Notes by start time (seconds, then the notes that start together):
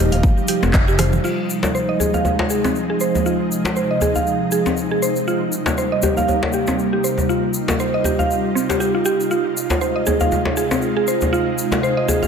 Already playing: D#1 C3 F3 G3 D#4
0.12 F5, open hi-hat, muted conga, djembe tone, shaker
0.23 kick, high conga, shaker
0.37 shaker
0.48 G4, open hi-hat, shaker
0.63 F1 C4, muted conga, djembe slap, high conga, shaker
0.73 kick, clap, shaker
0.88 G4, shaker
0.99 C5, cross-stick, open hi-hat, muted conga, low conga, shaker
1.13 low conga, shaker
1.24 C3 F3 G#3 D#4 F4, crash, shaker
1.50 shaker
1.63 djembe slap, djembe tone, shaker
1.75 C5, shaker
1.89 D#5
2.00 G#4, djembe tone, shaker
2.14 F5, djembe tone, shaker
2.25 djembe tone, shaker
2.39 djembe slap
2.50 G#4, shaker
2.64 C4, djembe slap, shaker
2.76 shaker
2.90 G#4
3.00 C5, shaker
3.15 djembe tone, shaker
3.26 F4, shaker
3.52 shaker
3.65 djembe slap, djembe tone, shaker
3.76 C5, shaker
3.91 D#5
4.01 G#4, djembe tone, shaker
4.15 F5, djembe tone, shaker
4.27 shaker
4.52 G#4, shaker
4.66 C4, djembe slap, shaker
4.77 shaker
4.91 G#4
5.02 C5, shaker
5.16 shaker
5.27 G3 A#3 F4, shaker
5.52 shaker
5.66 djembe slap, djembe tone, shaker
5.78 C5, shaker
5.92 D#5
6.02 G4, djembe tone, shaker
6.17 F5, djembe tone, shaker
6.28 djembe tone, shaker
6.43 djembe slap
6.53 G4, shaker
6.67 C4, djembe slap, shaker
6.79 shaker
6.93 G4
7.04 C5, shaker
7.18 djembe tone, shaker
7.29 G3 D#4 F4, shaker
7.54 shaker
7.68 djembe slap, djembe tone, shaker
7.80 C5, shaker
7.94 D#5
8.04 G4, djembe tone, shaker
8.19 F5, djembe tone, shaker
8.31 shaker
8.55 C4, shaker
8.69 G4, djembe slap, shaker
8.80 G4, shaker
8.95 F4
9.05 G4, shaker
9.20 shaker
9.31 C3 G#3 F4, shaker
9.57 shaker
9.70 djembe slap, djembe tone, shaker
9.81 C5, shaker
9.96 D#5
10.06 G#4, djembe tone, shaker
10.20 F5, djembe tone, shaker
10.32 djembe tone, shaker
10.45 djembe slap
10.57 G#4, shaker
10.71 C4, djembe slap, shaker
10.82 shaker
10.97 G#4
11.08 C5, shaker
11.21 djembe tone, shaker
11.33 F4, shaker
11.58 shaker
11.72 djembe slap, djembe tone, shaker
11.83 C5, shaker
11.97 D#5
12.08 G#4, djembe tone, shaker
12.23 F5, djembe tone, shaker